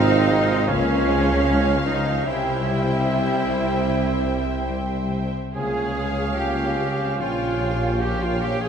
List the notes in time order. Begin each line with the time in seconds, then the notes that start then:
Already playing: G#1 G#2 G#3 C4 D#4 F4 C5 D#5 F5
0.30 G#3
0.68 C#2 C#3 A#3 C#4 F4 C#5 F5
1.07 G#3
1.46 F3 C#4
1.86 G#3 D#4 D#5
2.26 C2 C3 G3 C4 E4 G4 C5 E5 G5
2.67 G3
3.08 C4
3.49 G3
3.88 C3
4.29 C4
4.69 G3
5.11 C4
5.54 C#2 C#3 A#3 C#4 F4 G#4 C#5 F5 G#5
5.96 G#3 C#4
6.35 G#3 A#3 G4 G5
6.40 G4
6.76 C4
7.19 A#1 A#2 C#4 F4 G4 C#5 F5 G5
7.60 F3 A#3
8.01 A#3 G4 C#5 F5 G5
8.21 F4 F5
8.41 F3 G4 G5
8.61 G#4 G#5